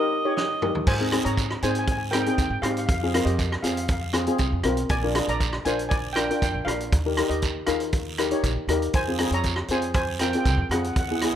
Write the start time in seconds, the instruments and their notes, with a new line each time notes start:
Already playing: alto saxophone D#5
0.00 steel pan D#4 G4 A#4
0.25 steel pan D#4 G4 C#5
0.36 alto saxophone D#5, snare
0.62 steel pan D#4 G4 A#4, mid tom
0.75 floor tom
0.87 upright bass G#2, steel pan C5 G#5, kick, crash, long guiro
1.00 steel pan C4 D#4 G#4
1.12 steel pan C4 D#4 G#4, cross-stick, closed hi-hat
1.25 upright bass G#2, steel pan C#5 A#5, closed hi-hat
1.37 kick, closed hi-hat, short guiro
1.51 cross-stick
1.62 upright bass G#2, steel pan C4 D#4 G#4 C5 G#5, closed hi-hat, short guiro
1.70 steel pan G#5
1.75 closed hi-hat
1.79 steel pan G#5
1.84 steel pan G#5, kick, closed hi-hat
1.88 steel pan G#5, long guiro
1.98 steel pan G#5
2.11 steel pan C4 D#4 G#4 A#4 G5, cross-stick, closed hi-hat, short guiro
2.20 steel pan G5
2.26 steel pan C4 D#4 G#4 G5, closed hi-hat
2.34 upright bass D#2, steel pan G5
2.38 steel pan G5, kick, closed hi-hat, short guiro
2.50 upright bass G#2, steel pan G5
2.62 upright bass G#2, steel pan C4 D#4 G4 G#4 F5, cross-stick, closed hi-hat
2.71 steel pan F5
2.77 steel pan F5, closed hi-hat
2.86 upright bass F2, steel pan F5, kick, closed hi-hat, long guiro
2.92 steel pan F5
3.00 steel pan F4 G#4 F5
3.04 steel pan C4 F5
3.14 steel pan C4 F4 A#4 F5, cross-stick, closed hi-hat
3.25 upright bass F2, steel pan G4 D#5, closed hi-hat
3.39 kick, closed hi-hat, short guiro
3.52 cross-stick
3.63 upright bass F2, steel pan C4 F4 G#4 F5, closed hi-hat, short guiro
3.72 steel pan F5
3.77 steel pan F5, closed hi-hat
3.83 steel pan F5
3.88 kick, closed hi-hat, long guiro
3.93 steel pan F5
4.01 steel pan F5
4.13 steel pan C4 F4 G#4, cross-stick, closed hi-hat, short guiro
4.27 steel pan C4 F4 G#4, closed hi-hat
4.38 upright bass C2, kick, closed hi-hat, short guiro
4.53 upright bass F2
4.64 upright bass B1, steel pan C4 F4 A#4, cross-stick, closed hi-hat
4.77 closed hi-hat
4.89 upright bass A#1, steel pan D5 G#5, kick, closed hi-hat, long guiro
5.03 steel pan D4 F4 A#4
5.15 steel pan D4 F4 G#4, cross-stick, closed hi-hat
5.28 upright bass A#1, steel pan D5 A#5, closed hi-hat
5.40 kick, closed hi-hat, short guiro
5.53 cross-stick
5.65 upright bass A#1, steel pan D4 F4 A#4 C5 G#5, closed hi-hat, short guiro
5.79 closed hi-hat
5.89 steel pan D5 G#5, kick, closed hi-hat, long guiro
6.13 steel pan D4 F4 A#4 G5, cross-stick, closed hi-hat, short guiro
6.22 steel pan G5
6.28 steel pan D4 F4 A#4 G5, closed hi-hat
6.36 steel pan G5
6.42 upright bass F2, steel pan G5, kick, closed hi-hat, short guiro
6.52 upright bass A#1, steel pan G5
6.65 upright bass A#1, steel pan D4 F4 A#4 F5, cross-stick, closed hi-hat
6.80 closed hi-hat
6.92 upright bass D#2, kick, closed hi-hat, long guiro
7.06 steel pan D#4 G4 A#4
7.17 steel pan D#4 G4 A#4, cross-stick, closed hi-hat
7.29 upright bass D#2, steel pan G4 D#5, closed hi-hat
7.42 kick, closed hi-hat, short guiro
7.66 upright bass D#2, steel pan D#4 F4 G#4 A#4 F5, cross-stick, closed hi-hat, short guiro
7.80 closed hi-hat
7.92 kick, closed hi-hat, long guiro
8.18 steel pan D#4 G4 A#4, cross-stick, closed hi-hat, short guiro
8.31 steel pan D#4 G4 C#5, closed hi-hat
8.43 upright bass A#1, kick, closed hi-hat, short guiro
8.56 upright bass D#2
8.68 upright bass D#2, steel pan D#4 G4 A#4, cross-stick, closed hi-hat
8.82 closed hi-hat
8.93 upright bass F2, steel pan C5 G#5, kick, closed hi-hat, long guiro
9.08 steel pan C4 F4 G#4
9.19 steel pan C4 F4 G#4, cross-stick, closed hi-hat
9.31 upright bass F2, steel pan C#5 A#5, closed hi-hat
9.43 kick, closed hi-hat, short guiro
9.56 cross-stick
9.68 upright bass F2, steel pan C4 F4 G#4 C5 G#5, closed hi-hat, short guiro
9.82 closed hi-hat
9.94 steel pan C5 G#5, kick, closed hi-hat, long guiro
10.19 steel pan C4 F4 A#4 G5, cross-stick, closed hi-hat, short guiro
10.30 steel pan G5, closed hi-hat
10.35 steel pan C4 F4 G#4 G5
10.44 upright bass C2, steel pan G5, kick, closed hi-hat, short guiro
10.50 steel pan G5
10.57 upright bass F2, steel pan G5
10.70 upright bass F2, steel pan C4 F4 G#4 F#5, cross-stick, closed hi-hat
10.81 steel pan F#5, closed hi-hat
10.87 steel pan F#5
10.93 upright bass E2, steel pan F#5, kick, closed hi-hat, long guiro
11.00 steel pan F#5
11.09 steel pan B3 E4 G#4 F#5
11.15 steel pan F#5
11.22 steel pan B3 E4 G#4 F#5, cross-stick, closed hi-hat